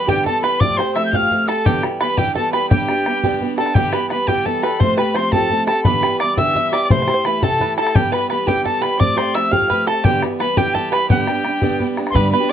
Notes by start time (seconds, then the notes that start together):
Already playing: B5
0.07 G2 D3 E3 G3 B3 G4 G5, bodhran
0.18 bodhran
0.24 E3 G3 B3 G4 A4 A5, bodhran
0.42 E3 G3 B3 G4 B4 B5, bodhran
0.60 F3 A3 C4 G4 D5 D6, bodhran
0.70 bodhran
0.77 C4 G4 C5 C6, bodhran
0.81 A3
0.95 F3 A3 C4 G4 E5 E6, bodhran
1.06 G6
1.13 F3 A3 C4 G4 F5 F6 G6, bodhran
1.22 bodhran
1.30 F3 A3 C4 G4, bodhran
1.48 A3 C4 G4 A4 A5, bodhran
1.65 G2 D3 E3 G3 B3 G4 G5, bodhran
1.75 bodhran
1.83 E3 G3 B3 G4, bodhran
2.00 E3 G3 B3 G4 B4 B5, bodhran
2.18 G2 D3 E3 G3 B3 G4 G5, bodhran
2.27 bodhran
2.35 E3 G3 B3 G4 A4 A5, bodhran
2.52 E3 G3 B3 G4 B4 B5, bodhran
2.70 G2 D3 G3 B3 D4 G4 G5, bodhran
2.80 bodhran
2.87 G3 B3 D4 G4, bodhran
3.06 G3 B3 D4 G4, bodhran
3.24 G2 D3 G3 B3 D4 G4, bodhran
3.33 bodhran
3.40 G3 B3 D4 G4, bodhran
3.58 G3 B3 D4 G4 A4 A5, bodhran
3.66 bodhran
3.75 G2 D3 E3 G3 B3 G4 G5, bodhran
3.84 bodhran
3.93 E3 G3 B3 G4 B4 B5, bodhran
4.10 E3 G3 B3 G4 B4 B5, bodhran
4.27 G2 D3 E3 G3 B3 G4 G5, bodhran
4.37 bodhran
4.45 E3 G3 B3 G4 A4 A5, bodhran
4.63 E3 G3 B3 G4 B4 B5, bodhran
4.80 F3 A3 C4 G4 C5 C6, bodhran
4.90 bodhran
4.97 A3 C4 G4 B4 B5, bodhran
5.14 F3 A3 C4 C5 C6, bodhran
5.19 G4
5.32 F3 A3 C4 G4 A4 A5, bodhran
5.42 bodhran
5.49 F3 A3 C4 G4, bodhran
5.67 A3 C4 G4 A4 A5, bodhran
5.84 G2 D3 E3 G3 B3 G4 B4 B5, bodhran
5.94 bodhran
6.02 E3 G3 B3 G4, bodhran
6.19 E3 G3 B3 G4 D5 D6, bodhran
6.37 G2 D3 E3 G3 B3 G4 E5 E6, bodhran
6.47 bodhran
6.54 E3 G3 B3 G4 E5, bodhran
6.72 E3 G3 B3 G4 D5 D6, bodhran
6.85 D5
6.90 C3 E3 A3 E4 G4 C5 C6, bodhran
7.00 C5, bodhran
7.07 A3 E4 G4, bodhran
7.14 C5
7.24 E3 A3 E4 G4 B4 B5, bodhran
7.42 C3 E3 A3 E4 G4 A4 A5, bodhran
7.52 bodhran
7.59 E3 A3 E4 G4 B4, bodhran
7.77 A3 E4 G4 A4 A5, bodhran
7.87 bodhran
7.94 G2 D3 E3 G3 B3 G4 G5, bodhran
8.04 bodhran
8.12 E3 G3 B3 G4 B4 B5, bodhran
8.29 E3 G3 B3 G4 B4 B5, bodhran
8.46 G2 D3 E3 G3 B3 G4 G5, bodhran
8.57 bodhran
8.63 E3 G3 B3 G4 A4 A5, bodhran
8.81 E3 G3 B3 G4 B4 B5, bodhran
8.98 F3 A3 C4 G4 D5 D6, bodhran
9.09 bodhran
9.16 A3 C4 G4 C5 C6, bodhran
9.34 F3 A3 C4 G4 E5 E6, bodhran
9.51 F3 A3 C4 G4 F5 F6, bodhran
9.62 bodhran
9.70 F3 A3 C4 G4 B4, bodhran
9.86 A3 C4 G4 A4 A5, bodhran
10.04 G2 D3 E3 G3 B3 G4 G5, bodhran
10.14 bodhran
10.21 E3 G3 B3 G4, bodhran
10.39 E3 G3 B3 G4 B4 B5, bodhran
10.57 G2 D3 E3 G3 B3 G4 G5, bodhran
10.74 E3 G3 B3 G4 A4 A5, bodhran
10.91 E3 G3 B3 G4 B4 B5, bodhran
11.09 G2 D3 G3 B3 D4 G4 F#5, bodhran
11.19 G5, bodhran
11.26 G3 B3 D4 G4, bodhran
11.43 G3 B3 D4 G4, bodhran
11.61 G2 D3 G3 B3 D4 G4, bodhran
11.71 bodhran
11.79 G3 B3 D4 G4, bodhran
11.97 G3 B3 D4 G4, bodhran
12.07 C6, bodhran
12.13 G2 D3 G3 B3 D4 G4 B4 B5
12.31 G3 B3 D4 G4 B4 B5
12.40 G3 B3 D4 G4
12.49 D5